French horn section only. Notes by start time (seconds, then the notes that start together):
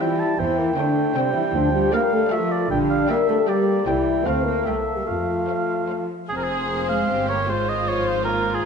0.00 E4
0.37 E4
0.75 D4
1.15 C4
1.33 E4
1.52 D4
1.72 G4
1.92 A#4
2.13 A4
2.32 F4
2.70 D4
3.10 A#4
3.28 A4
3.47 G4
3.86 E4
4.25 C5
4.44 A#4
4.65 A4
4.97 G4
5.08 F4